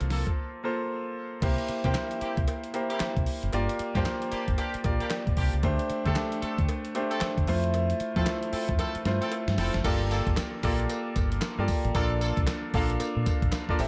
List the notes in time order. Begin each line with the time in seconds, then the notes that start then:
Already playing: A#3 F4 A4 C5
0.01 C2, closed hi-hat
0.10 A#3 C4 F4 A4, snare, open hi-hat
0.27 kick, closed hi-hat
0.64 A#3 F4 A4 C5
1.42 C2 A#3 E4 G4 C5, kick, closed hi-hat, crash, cowbell
1.58 closed hi-hat
1.68 muted fingered electric bass stroke, closed hi-hat
1.84 C3 A#3 C4 E4 G4 C5, kick, closed hi-hat
1.94 snare, clap, closed hi-hat, cowbell
2.11 closed hi-hat
2.21 A#3 C4 E4 G4, muted fingered electric bass stroke, closed hi-hat
2.37 C2, kick, closed hi-hat
2.48 closed hi-hat, cowbell
2.64 closed hi-hat
2.74 A#3 E4 G4 C5, closed hi-hat, cowbell
2.90 A#3 C4 E4 G4, closed hi-hat
3.00 muted fingered electric bass stroke, snare, clap, closed hi-hat, cowbell
3.17 C2, kick, closed hi-hat
3.26 open hi-hat
3.43 F#1, closed hi-hat
3.53 G1 A#3 F4 G4 D5, closed hi-hat, cowbell
3.69 closed hi-hat
3.79 muted fingered electric bass stroke, closed hi-hat
3.95 G2 A#3 D4 F4 G4 C5, kick, closed hi-hat
4.05 snare, clap, closed hi-hat, cowbell
4.22 closed hi-hat
4.31 A#3 D4 F4 G4, muted fingered electric bass stroke, closed hi-hat
4.48 G1, kick, closed hi-hat
4.58 A#3 D4 F4 G4, closed hi-hat, cowbell
4.74 muted fingered electric bass stroke, closed hi-hat
4.84 A#1 A#3 F4 G4 D5, kick, closed hi-hat, cowbell
5.00 A#3 D4 F4 G4, closed hi-hat
5.10 snare, clap, closed hi-hat, cowbell
5.27 A#1, kick, closed hi-hat
5.37 C2 A#3 D4 F4 G4, kick, open hi-hat
5.53 C#2, closed hi-hat
5.63 D2 A3 D4 G4 C5, kick, closed hi-hat, cowbell
5.79 closed hi-hat
5.90 muted fingered electric bass stroke, closed hi-hat
6.06 D3 A3 C4 D4 G4 A4, kick, closed hi-hat
6.16 snare, clap, closed hi-hat, cowbell
6.32 closed hi-hat
6.42 C4 D4 G4 A4, muted fingered electric bass stroke, closed hi-hat
6.58 D2, kick, closed hi-hat
6.69 closed hi-hat, cowbell
6.85 closed hi-hat
6.95 A3 D4 G4 C5, closed hi-hat, cowbell
7.11 C4 D4 G4 A4, closed hi-hat
7.21 muted fingered electric bass stroke, snare, clap, closed hi-hat, cowbell
7.38 D2, kick, closed hi-hat
7.47 F2 A3 E4 F4 C5, open hi-hat
7.64 closed hi-hat
7.74 closed hi-hat, cowbell
7.90 closed hi-hat
8.00 muted fingered electric bass stroke, closed hi-hat
8.16 F3 A3 C4 E4 F4 A4 C5, kick, closed hi-hat
8.26 snare, clap, closed hi-hat, cowbell
8.43 closed hi-hat
8.52 C4 E4 F4 A4, muted fingered electric bass stroke, open hi-hat
8.69 F2, kick, closed hi-hat
8.79 C4 E4 F4 A4, snare, closed hi-hat, cowbell
8.95 muted fingered electric bass stroke, closed hi-hat
9.05 G2 A3 E4 F4 C5, snare, closed hi-hat, cowbell
9.21 C4 E4 F4 A4, closed hi-hat
9.32 closed hi-hat, cowbell
9.48 G2, snare, closed hi-hat
9.58 F1 C4 E4 F4 A4, snare, open hi-hat
9.74 F#1, snare, closed hi-hat
9.84 G1 A#3 F4 G4 A4 D5, kick, closed hi-hat, crash, tambourine, cowbell
10.10 A#3 F4 G4 A4, closed hi-hat, tambourine
10.27 G1, kick, closed hi-hat
10.37 snare, clap, closed hi-hat, tambourine, cowbell
10.63 A#1 A#3 F4 G4 A4 D5, kick, snare, open hi-hat
10.80 closed hi-hat
10.89 closed hi-hat, tambourine, cowbell
11.16 G1, kick, closed hi-hat, tambourine, cowbell
11.32 closed hi-hat
11.41 snare, clap, closed hi-hat, tambourine, cowbell
11.58 G2 A#3 F4 G4 A4 D5
11.68 kick, open hi-hat, tambourine
11.85 A1, closed hi-hat
11.94 A#1 A#3 D4 F4 A4 D5, kick, closed hi-hat, tambourine, cowbell
12.21 A#3 D4 F4 A4, closed hi-hat, tambourine
12.37 C2, kick, closed hi-hat
12.47 snare, clap, closed hi-hat, tambourine, cowbell
12.74 A#1 A#3 D4 F4 A4 F5, kick, open hi-hat
12.90 closed hi-hat
13.00 muted fingered electric bass stroke, closed hi-hat, tambourine, cowbell
13.17 A#2
13.26 kick, closed hi-hat, tambourine, cowbell
13.42 A#1, kick, closed hi-hat
13.52 snare, clap, closed hi-hat, tambourine, cowbell
13.69 A#3 D4 F4 A4 D5, kick
13.79 A1 C4 E4 G4 A4 E5, open hi-hat, tambourine